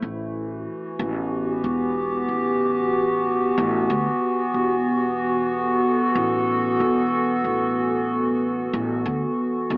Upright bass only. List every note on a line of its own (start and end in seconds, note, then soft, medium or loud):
0.02 0.64 A1 medium
0.99 1.61 A1 loud
1.64 2.26 E1 medium
2.28 3.55 A1 medium
3.58 3.86 A1 loud
3.90 4.06 D2 loud
4.54 5.80 E1 medium
6.15 6.77 A1 loud
6.80 7.42 E1 medium
7.44 8.71 A1 medium
8.73 9.02 A1 loud
9.06 9.22 D2 loud
9.70 9.77 E1 loud